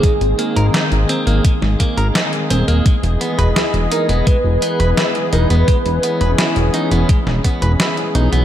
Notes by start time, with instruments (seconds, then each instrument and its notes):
Already playing: analog synth pad D#3 G#3 A#3 C4 G#4, analog synth lead G#4
0.03 clean electric guitar G#3, kick, closed hi-hat
0.21 analog synth bass G#1, closed hi-hat
0.39 clean electric guitar A#3, closed hi-hat
0.56 analog synth bass G#1, clean electric guitar A#4, closed hi-hat
0.74 clean electric guitar D#4, snare, closed hi-hat
0.92 analog synth bass G#1, closed hi-hat
1.09 clean electric guitar C4, closed hi-hat
1.27 analog synth bass G#1, clean electric guitar A#3, closed hi-hat
1.45 clean electric guitar G#3, kick, closed hi-hat
1.62 analog synth bass G#1, snare
1.80 clean electric guitar A#3, kick, closed hi-hat
1.97 analog synth bass G#1, clean electric guitar A#4, closed hi-hat
2.15 clean electric guitar D#4, snare, closed hi-hat
2.33 closed hi-hat
2.50 analog synth bass D#1, clean electric guitar C4, closed hi-hat
2.68 analog synth bass D#1, clean electric guitar A#3, closed hi-hat
2.86 analog synth pad E3 B3 D#5, clean electric guitar G#3, kick, closed hi-hat
3.03 analog synth bass E1, closed hi-hat
3.21 clean electric guitar B3, closed hi-hat
3.39 analog synth bass E1, clean electric guitar B4, closed hi-hat, mid tom
3.56 clean electric guitar E4, analog synth lead G#4, snare, closed hi-hat
3.74 analog synth bass E1, closed hi-hat
3.91 clean electric guitar D#4, analog synth lead A#4, closed hi-hat
4.09 analog synth bass E1, clean electric guitar B3, closed hi-hat
4.27 clean electric guitar G#3, analog synth lead B4, kick, closed hi-hat
4.44 analog synth bass E1
4.62 clean electric guitar B3, closed hi-hat
4.80 analog synth bass E1, clean electric guitar B4, closed hi-hat
4.97 clean electric guitar E4, snare, closed hi-hat
5.15 closed hi-hat
5.33 analog synth bass E1, clean electric guitar D#4, analog synth lead B4, closed hi-hat
5.50 analog synth bass E1, clean electric guitar B3, closed hi-hat
5.68 clean electric guitar G#3, analog synth pad C#4, kick, closed hi-hat
5.86 analog synth bass E1, closed hi-hat
6.03 clean electric guitar B3, closed hi-hat
6.21 analog synth bass E1, clean electric guitar B4, closed hi-hat
6.38 clean electric guitar E4, snare, closed hi-hat
6.56 analog synth bass E1, closed hi-hat
6.74 clean electric guitar D#4, closed hi-hat
6.91 analog synth bass E1, clean electric guitar B3, closed hi-hat
7.09 clean electric guitar G#3, kick, closed hi-hat
7.27 analog synth bass E1, snare
7.44 clean electric guitar B3, kick, closed hi-hat
7.62 analog synth bass E1, clean electric guitar B4, closed hi-hat
7.80 clean electric guitar E4, snare, closed hi-hat
7.97 closed hi-hat
8.15 analog synth bass B1, clean electric guitar D#4, closed hi-hat
8.33 analog synth bass B1, clean electric guitar B3, closed hi-hat